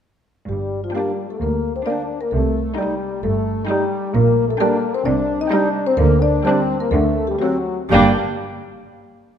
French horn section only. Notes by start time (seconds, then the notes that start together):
0.48 G3
0.83 F3
0.94 G3
1.29 A3
1.38 A#3
1.76 C4
1.88 D4
2.22 A#3
2.34 A3
2.77 G3
3.24 A3
3.67 G3
4.13 A#3
4.48 A3
4.60 A#3
4.95 C4
5.05 D4
5.40 D#4
5.52 D4
5.88 C4
5.98 A#3
6.20 D4
6.45 C4
6.80 A#3
6.92 A3
7.30 G3
7.41 F#3
7.93 G3